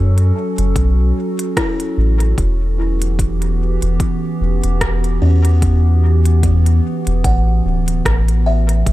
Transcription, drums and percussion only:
0.18 closed hi-hat
0.58 closed hi-hat
0.76 kick, closed hi-hat
1.39 closed hi-hat
1.57 kick, cross-stick, closed hi-hat
1.80 closed hi-hat
2.20 closed hi-hat
2.38 kick, closed hi-hat
3.02 closed hi-hat
3.19 kick, closed hi-hat
3.42 closed hi-hat
3.82 closed hi-hat
4.00 kick, closed hi-hat
4.64 closed hi-hat
4.81 kick, cross-stick, closed hi-hat
5.04 closed hi-hat
5.45 closed hi-hat
5.62 kick, closed hi-hat
6.25 closed hi-hat
6.43 kick, closed hi-hat
6.66 closed hi-hat
7.07 closed hi-hat
7.24 kick, closed hi-hat
7.88 closed hi-hat
8.05 kick, cross-stick, closed hi-hat
8.28 closed hi-hat
8.69 closed hi-hat
8.86 kick, closed hi-hat

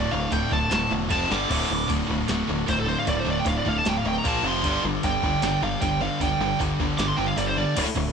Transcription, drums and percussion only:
0.32 kick, open hi-hat
0.52 kick
0.71 snare, open hi-hat
1.10 kick, snare, open hi-hat
1.32 snare
1.51 kick, crash
1.90 kick, open hi-hat
2.09 kick
2.28 snare, open hi-hat
2.68 kick, open hi-hat
3.07 kick, open hi-hat
3.46 kick, open hi-hat
3.66 kick
3.85 snare, open hi-hat
4.25 kick, open hi-hat
4.64 kick, open hi-hat
5.03 kick, open hi-hat
5.23 kick
5.42 snare, open hi-hat
5.82 kick, open hi-hat
6.21 kick, open hi-hat
6.60 kick, open hi-hat
6.80 kick
6.99 snare, open hi-hat
7.38 open hi-hat
7.77 kick, crash
7.96 kick

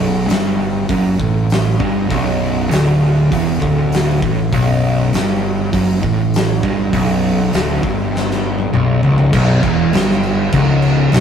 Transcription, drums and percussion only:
0.29 snare, open hi-hat
0.89 kick, open hi-hat
1.20 kick
1.50 snare, open hi-hat
1.80 kick
2.10 kick, open hi-hat
2.71 snare, open hi-hat
3.32 kick, open hi-hat
3.62 kick
3.92 snare, open hi-hat
4.22 kick
4.53 kick, open hi-hat
5.13 snare, open hi-hat
5.73 kick, open hi-hat
6.03 kick
6.34 snare, open hi-hat
6.63 kick
6.93 kick, open hi-hat
7.53 snare, open hi-hat
7.83 kick
8.16 snare
8.31 snare
8.59 high tom
8.74 mid tom
9.03 floor tom
9.18 floor tom
9.33 kick, crash
9.63 kick, crash
9.93 snare, crash
10.11 snare
10.23 crash
10.53 kick, crash
10.82 crash
11.12 snare, crash

